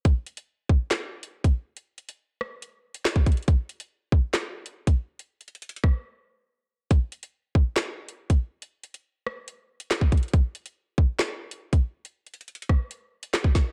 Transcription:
\new DrumStaff \with { instrumentName = "Drums" } \drummode { \time 4/4 \tempo 4 = 140 <hh bd>8 hh16 hh16 r8 bd8 <hc hh sn>8. hh16 r16 <hh bd>8. | hh8 hh16 hh16 r8 ss8 hh8. hh16 <hc hh sn>16 bd16 <hh bd>32 hh32 hh32 hh32 | <hh bd>8 hh16 hh16 r8 bd8 <hc hh sn>8. hh16 r16 <hh bd>8. | \tuplet 3/2 { hh16 r16 r16 hh16 hh16 hh16 hh16 hh16 hh16 <bd ss>16 r16 r16 } r4 r4 |
<hh bd>8 hh16 hh16 r8 bd8 <hc hh sn>8. hh16 r16 <hh bd>8. | hh8 hh16 hh16 r8 ss8 hh8. hh16 <hc hh sn>16 bd16 <hh bd>32 hh32 hh32 hh32 | <hh bd>8 hh16 hh16 r8 bd8 <hc hh sn>8. hh16 r16 <hh bd>8. | \tuplet 3/2 { hh16 r16 r16 hh16 hh16 hh16 hh16 hh16 hh16 <bd ss>16 r16 r16 } hh8. hh16 <hc hh sn>16 bd16 <hh bd sn>8 | }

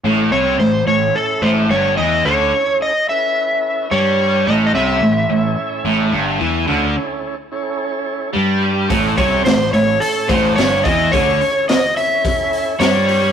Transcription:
<<
  \new Staff \with { instrumentName = "Electric slide guitar" } { \time 4/4 \key a \mixolydian \tempo 4 = 108 r8 cis''8 c''8 cis''8 a'8 c''8 cis''8 dis''8 | cis''4 dis''8 e''4. cis''4 | dis''16. dis''32 e''2. r8 | r1 |
r8 cis''8 c''8 cis''8 a'8 c''8 cis''8 dis''8 | cis''4 dis''8 e''4. cis''4 | }
  \new Staff \with { instrumentName = "Tonewheel organ" } { \time 4/4 \key a \mixolydian <cis' e' a' cis''>8 <cis' e' a' cis''>8 r8 <cis' e' a' e''>4. r4 | <cis' e' a' cis''>8 <cis' e' a' cis''>8 r8 <cis' e' a' b'>4. r4 | <cis' e' a' e''>8 <cis' e' a' cis''>8 r8 <cis' e' a' cis''>4. r4 | <cis' e' a' e''>8 <cis' e' a' cis''>8 r8 <cis' e' a' cis''>4. r4 |
<cis' e' a' cis''>8 <cis' e' a' cis''>8 r8 <cis' e' a' cis''>4. r4 | <cis' e' a' cis''>8 <cis' e' a' cis''>8 r8 <cis' e' a' cis''>4. r4 | }
  \new Staff \with { instrumentName = "Distorted electric guitar" } { \clef bass \time 4/4 \key a \mixolydian a,8 c8 a,8 a,8 r8 a,8 g,8 e8 | d8 r2 r8 g4 | a,8 c8 a,8 a,8 r8 a,8 g,8 e8 | d8 r2 r8 g4 |
a,8 c8 a,8 a,8 r8 a,8 g,8 e8 | d8 r2 r8 g4 | }
  \new Staff \with { instrumentName = "Picked electric bass" } { \clef bass \time 4/4 \key a \mixolydian a,,8 c,8 a,,8 a,,8 r8 a,,8 g,,8 e,8 | d,8 r2 r8 g,4 | a,,8 c,8 a,,8 a,,8 r8 a,,8 g,,8 e,8 | d,8 r2 r8 g,4 |
a,,8 c,8 a,,8 a,,8 r8 a,,8 g,,8 e,8 | d,8 r2 r8 g,4 | }
  \new DrumStaff \with { instrumentName = "Drums" } \drummode { \time 4/4 r4 r4 r4 r4 | r4 r4 r4 r4 | r4 r4 r4 r4 | r4 r4 r4 r4 |
<hho bd>8 <hho bd>8 <hho sn>16 sn16 hho8 hho8 <hho bd>8 <hho sn>8 <hho bd>8 | <hho bd>8 hho8 <hho sn>8 hho8 <hho bd>8 hho8 <hho sn>8 hho8 | }
>>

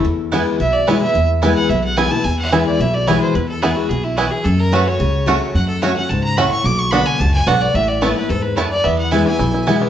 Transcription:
<<
  \new Staff \with { instrumentName = "Fiddle" } { \time 4/4 \key e \mixolydian \tempo 4 = 218 r2 e''8 d''8 cis''8 e''8~ | e''8 r4 fis''8 e''8 fis''8 gis''8 a''8 | gis''8 fis''8 e''8 d''8 e''8 d''8 cis''8 c''8 | b'8 a'8 gis'8 fis'8 gis'8 e'8 fis'8 gis'8 |
a'8 bes'8 b'8 cis''4. r4 | fis''8 a'8 cis''8 fis''8 a''8 bes''8 b''8 cis'''8 | d'''8 cis'''8 b''8 gis''8 a''8 gis''8 fis''8 d''8 | e''8 d''8 cis''8 b'8 a'8 b'8 cis''8 d''8 |
e''8 fis''8 gis''8 gis''4. r4 | }
  \new Staff \with { instrumentName = "Mandolin" } { \time 4/4 \key e \mixolydian r4 <b e' b' gis''>8 r4. <b e' b' gis''>8 r8 | r4 <b e' b' gis''>8 r4. <b e' b' gis''>8 r8 | r4 <b e' b' gis''>8 r4. <b e' b' gis''>8 r8 | r4 <b e' b' gis''>8 r4. <b e' b' gis''>8 r8 |
r4 <a fis' cis'' fis''>8 r4. <a fis' cis'' fis''>8 r8 | r4 <a fis' cis'' fis''>8 r4. <a fis' cis'' fis''>8 r8 | r4 <b fis' d'' fis''>8 r4. <b fis' d'' fis''>8 r8 | r4 <b e' b' a''>8 r4. <b e' b' a''>8 r8 |
r4 <b e' b' gis''>8 r4. <b e' b' gis''>8 r8 | }
  \new Staff \with { instrumentName = "Five-string banjo" } { \time 4/4 \key e \mixolydian r4 <b e'>8 r4. <b e'>8 r8 | r4 <b e'>8 r4. <b e'>8 r8 | r4 <b e'>8 r4. <b e'>8 r8 | r4 <b e'>8 r4. <b e'>8 r8 |
r4 <a cis' fis'>8 r4. <a cis' fis'>8 r8 | r4 <a cis' fis'>8 r4. <a cis' fis'>8 r8 | r4 <b d' fis'>8 r4. <b d' fis'>8 r8 | r4 <a e'>8 r4. <a e'>8 r8 |
b4 e'8 e8 e'8 e'8 b8 e8 | }
  \new Staff \with { instrumentName = "Steel-string acoustic guitar" } { \clef bass \time 4/4 \key e \mixolydian << { r4 <e gis b e'>4 r4 <e gis b e'>8 <b e'>8 | r4 <e gis b e'>4 r4 <e gis b e'>8 <b e'>8 | r4 <e gis b e'>4 r4 <e gis b e'>4 | r4 <e gis b e'>4 r2 |
r4 <fis a cis' fis'>4 r4 <fis a cis' fis'>4 | r4 <fis a cis' fis'>8 <cis' fis'>8 r2 | r4 <d b d' fis'>4 r2 | r4 <e a b e'>8 <b e'>8 r2 |
r4 <e gis b e'>8 <b e'>8 r4 <e gis b e'>4 | } \\ { e,2 b,2 | e,2 b,2 | e,2 b,2 | e,2 b,4 e,4 |
fis,2 cis2 | fis,2 gis,4 a,4 | b,2 fis,4 gis,4 | a,2 gis,4 fis,4 |
e,2 b,2 | } >> }
  \new Staff \with { instrumentName = "Upright bass" } { \clef bass \time 4/4 \key e \mixolydian e,2 b,,2 | e,2 b,,2 | e,2 b,,2 | e,2 b,,2 |
fis,2 cis,2 | fis,2 cis,2 | b,,2 cis,4 b,,4 | a,,2 e,2 |
e,2 b,,2 | }
>>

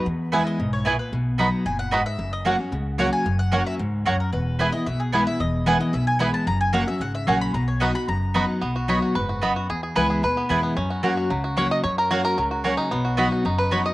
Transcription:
<<
  \new Staff \with { instrumentName = "Mandolin" } { \time 4/4 \key b \major \tempo 4 = 224 r4 e''8 dis''4 cis''4 b'8 | r2 gis''8 fis''4 e''8~ | e''8 dis''8 r2 ais''8 gis''8~ | gis''8 fis''4 e''8 r4 cis''8 ais'8 |
b'4. dis''8 e''8 gis'8 b'8 e''8 | dis''4 fis''8 dis''8 e''8 gis''8 b''8 a''8 | ais''8 gis''8 fis''8 e''8 fis''8 e''8 gis''8 b''8 | ais''8 cis''8 fis''8 b''8 ais''4.~ ais''16 r16 |
r1 | r1 | r1 | r1 |
r1 | }
  \new Staff \with { instrumentName = "Mandolin" } { \time 4/4 \key b \major r4 <b e' b' gis''>8 r4. <b e' b' gis''>8 r8 | r4 <b fis' dis'' b''>8 r4. <b fis' dis'' b''>8 r8 | r4 <ais fis' cis'' fis''>8 r4. <ais fis' cis'' fis''>8 r8 | r4 <ais fis' cis'' fis''>8 r4. <ais fis' cis'' fis''>8 r8 |
r4 <b e' b' gis''>8 r4. <b e' b' gis''>8 r8 | r4 <b e' b' gis''>8 r4. <b e' b' gis''>8 r8 | r4 <ais fis' cis'' fis''>8 r4. <ais fis' cis'' fis''>8 r8 | r4 <b fis' dis'' b''>8 r4. <b fis' dis'' b''>8 r8 |
r4 <b fis' dis'' b''>8 r4. <b fis' dis'' b''>8 r8 | r4 <b e' b' gis''>8 r4. <b e' b' gis''>8 r8 | r4 <ais fis' cis'' fis''>8 r4. <ais fis' cis'' fis''>8 r8 | r4 <ais fis' cis'' fis''>8 r4. <ais fis' cis'' fis''>8 r8 |
r4 <b fis' dis'' b''>8 r4. <b fis' dis'' b''>8 r8 | }
  \new Staff \with { instrumentName = "Five-string banjo" } { \time 4/4 \key b \major << { r4 <b e' gis'>8 r4. <b e' gis'>8 r8 | r4 <b dis' fis'>8 r4. <b dis' fis'>8 r8 | r4 <cis' fis'>8 r4. <cis' fis'>8 r8 | r4 <cis' fis'>8 r4. <cis' fis'>8 r8 |
r4 <b e' gis'>8 r4. <b e' gis'>8 r8 | r4 <b e' gis'>8 r4. <b e' gis'>8 r8 | r4 <cis' fis'>8 r4. <cis' fis'>8 r8 | r4 <b dis' fis'>8 r4. <b dis' fis'>8 r8 |
r4 cis''4 b'2 | gis'4 b'4 b'4. r8 | r2. cis''8 dis''8 | cis''8 ais'8 fis'8 ais'4. r8 dis'8~ |
dis'4 fis'8 r4 b'8 cis''8 dis''8 | } \\ { r1 | r1 | r1 | r1 |
r1 | r1 | r1 | r1 |
b8 fis'4 fis'4 fis'8 b8 fis'8 | r8 gis'4 gis'4 b8 gis'8 b8 | cis'8 fis'8 fis'8 fis'8 fis8 fis'4. | r2 fis8 fis'8 cis'4 |
b8 fis'4 fis'8 dis'4. r8 | } >> }
  \new Staff \with { instrumentName = "Steel-string acoustic guitar" } { \time 4/4 \key b \major << { r4 <e gis b e'>4 r2 | r4 <fis b dis' fis'>4 r2 | r4 <fis ais cis' fis'>8 <cis' fis'>8 r4 <fis ais cis' fis'>4 | r4 <fis ais cis' fis'>4 r2 |
r4 <e gis b e'>8 <b e'>8 r4 <e gis b e'>8 <b e'>8 | r4 <e gis b e'>8 <b e'>8 r4 <e gis b e'>4 | r4 <fis ais cis' fis'>8 <cis' fis'>8 r4 <fis ais cis' fis'>4 | r4 <fis b dis' fis'>8 <dis' fis'>8 r4 <fis b dis' fis'>4 |
r4 <fis b dis' fis'>4 r2 | r4 <e gis b e'>4 r4 <e gis b e'>4 | r4 <fis ais cis' fis'>4 r4 <fis ais cis' fis'>4 | r4 <fis ais cis' fis'>4 r4 <fis ais cis' fis'>4 |
r4 <fis b dis' fis'>4 r4 <fis b dis' fis'>4 | } \\ { e,2 gis,4 ais,4 | b,2 ais,4 gis,4 | fis,2 cis2 | fis,2 gis,4 fis,4 |
e,2 b,2 | e,2 b,2 | fis,2 cis2 | b,2 fis,2 |
b,2 gis,4 fis,4 | e,2 b,2 | fis,2 cis2 | fis,2 cis2 |
b,2 fis,2 | } >> }
  \new Staff \with { instrumentName = "Upright bass" } { \clef bass \time 4/4 \key b \major e,2 b,,2 | b,,2 fis,,2 | fis,,2 cis,2 | fis,,2 cis,2 |
e,,2 b,,2 | e,,2 b,,2 | fis,,2 gis,,4 ais,,4 | b,,2 fis,,2 |
b,,2 fis,,2 | e,4 cis,4 dis,4 e,4 | fis,2 cis,2 | fis,2 cis,2 |
b,,2 fis,,2 | }
>>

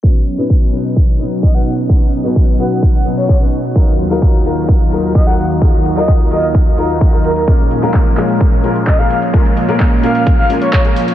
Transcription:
<<
  \new Staff \with { instrumentName = "Soft synth lead" } { \time 4/4 \key ces \lydian \tempo 4 = 129 r2. dis''16 fis''16 fis''16 r16 | r4. fis''16 fis''16 r16 fis''16 r16 cis''16 cis''16 r8. | r2. ees''16 ges''16 ges''16 r16 | r8. ees''16 r8 ees''16 r4. r16 bes'16 bes'16 |
r2. ees''16 f''16 f''16 r16 | r4. f''16 f''16 r16 f''16 r16 des''16 des''16 r8. | }
  \new Staff \with { instrumentName = "Grand piano" } { \time 4/4 \key ces \lydian <b, fis cis' dis' b'>16 r8 <b, fis cis' dis' b'>8. <b, fis cis' dis' b'>8 r8 <b, fis cis' dis' b'>8. <b, fis cis' dis' b'>16 r8 | <b, fis cis' dis' b'>16 r8 <b, fis cis' dis' b'>8. <b, fis cis' dis' b'>8 r8 <b, fis cis' dis' b'>8. <b, fis cis' dis' b'>16 r8 | <ges ees' f' bes'>16 r8 <ges ees' f' bes'>8. <ges ees' f' bes'>8 r8 <ges ees' f' bes'>8. <ges ees' f' bes'>16 r8 | <ges ees' f' bes'>16 r8 <ges ees' f' bes'>8. <ges ees' f' bes'>8 r8 <ges ees' f' bes'>8. <ges ees' f' bes'>16 r8 |
<bes, aes des' f' bes'>16 r8 <bes, aes des' f' bes'>8. <bes, aes des' f' bes'>8 r8 <bes, aes des' f' bes'>8. <bes, aes des' f' bes'>16 r8 | <bes, aes des' f' bes'>16 r8 <bes, aes des' f' bes'>8. <bes, aes des' f' bes'>8 r8 <bes, aes des' f' bes'>8. <bes, aes des' f' bes'>16 r8 | }
  \new Staff \with { instrumentName = "Analog synth pad" } { \clef bass \time 4/4 \key ces \lydian << { <b, fis dis'>1~ | <b, fis dis'>1 | <ees, ees f'>1~ | <ees, ees f'>1 |
<bes, f des'>1~ | <bes, f des'>1 | } \\ { cis'1~ | cis'1 | r1 | r1 |
aes1 | bes1 | } >> }
  \new DrumStaff \with { instrumentName = "Drums" } \drummode { \time 4/4 <hh bd>16 hh16 hh16 hh16 <hh bd>8 hh16 hh16 <hh bd>8 hh16 hh16 <hh bd>16 hh16 hh16 hh16 | <hh bd>16 hh16 hh16 hh16 <hh bd>8 hh16 hh16 <hh bd>8 hh16 hh16 <hh bd>16 hh16 hh16 hh16 | <hh bd>16 hh16 hh16 hh16 <hh bd>8 hh16 hh16 <hh bd>8 hh16 hh16 <hh bd>16 hh16 hh16 hh16 | <hh bd>16 hh16 hh16 hh16 <hh bd>16 hh16 hh16 hh16 <hh bd>8 hh16 hh16 <hh bd>16 hh16 hh16 hh16 |
<hh bd>16 hh16 hho16 hh16 <hc hh bd>8 <hc hho>16 hh16 <hh bd>8 hho16 hh16 <hc hh bd>16 hh16 hho16 hh16 | <hh bd>16 hh16 hho16 hh16 <hc hh bd>8 hho16 hh16 <hh bd>8 hho16 hh16 <hc hh bd>16 hh16 hho16 hh16 | }
>>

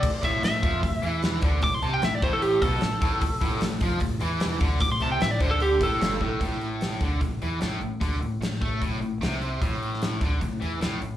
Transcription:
<<
  \new Staff \with { instrumentName = "Lead electric guitar" } { \time 4/4 \key a \minor \tempo 4 = 150 d''8 e''8 e''2 r4 | d'''16 c'''16 a''16 g''16 e''16 d''16 c''16 a'16 g'8 a'4.~ | a'4. r2 r8 | d'''16 c'''16 a''16 g''16 e''16 d''16 c''16 a'16 g'8 a'4. |
r1 | r1 | r1 | }
  \new Staff \with { instrumentName = "Distorted electric guitar" } { \clef bass \time 4/4 \key a \minor r8 a,8 a,8 f8 a,8 e4 d8 | a,8 c8 a,8 a,4 b,8 a,8 a,8 | r8 a,8 a,8 f8 a,8 e4 d8 | a,8 c8 a,8 d4 a,8 g,8 a,8 |
a,4. d8 a,8 e8 a,8 a,8 | d8 a,8 a,8 a8 a,8 a,8 c4 | a,4. d8 a,8 e8 a,8 a,8 | }
  \new Staff \with { instrumentName = "Overdriven electric guitar" } { \clef bass \time 4/4 \key a \minor r8 a,8 a,8 f8 a,8 e4 d8 | a,8 c8 a,8 a,4 b,8 a,8 a,8 | r8 a,8 a,8 f8 a,8 e4 d8 | a,8 c8 a,8 d4 a,8 g,8 a,8 |
a,4. d8 a,8 e8 a,8 a,8 | d8 a,8 a,8 a8 a,8 a,8 c4 | a,4. d8 a,8 e8 a,8 a,8 | }
  \new Staff \with { instrumentName = "Fingered electric bass" } { \clef bass \time 4/4 \key a \minor r8 a,,8 a,,8 f,8 a,,8 e,4 d,8 | a,,8 c,8 a,,8 a,,4 b,,8 a,,8 a,,8 | r8 a,,8 a,,8 f,8 a,,8 e,4 d,8 | a,,8 c,8 a,,8 d,4 a,,8 g,,8 a,,8 |
a,,4. d,8 a,,8 e,8 a,,8 a,,8 | d,8 a,,8 a,,8 a,8 a,,8 a,,8 c,4 | a,,4. d,8 a,,8 e,8 a,,8 a,,8 | }
  \new DrumStaff \with { instrumentName = "Drums" } \drummode { \time 4/4 <cymc hho bd>8 <hho bd>8 <hho sn>8 <hho bd>8 <hho bd>8 hho8 <hho sn>8 <hho bd>8 | <hho bd>8 hho8 <hho sn>8 <hho bd>8 hho8 <hho bd>8 <hho sn>8 <hho bd>8 | <hho bd>8 <hho bd>8 <hho sn>8 <hho bd>8 <hho bd>8 hho8 <hho sn>8 <hho bd>8 | <hho bd>8 hho8 <hho sn>8 <hho bd>8 hho8 <hho bd>8 <hho sn>8 bd8 |
<hho bd>8 hho8 <hho sn>16 sn16 <hho bd>8 <hho bd>8 hho8 <hho sn>8 hho8 | <hho bd>8 hho8 <hho sn>16 sn16 <hho bd>8 <hho bd>8 hho8 <hho sn>8 hho8 | <hho bd>8 hho16 sn16 <hho sn>8 <hho bd>8 <hho bd>8 hho8 <hho sn>8 hho8 | }
>>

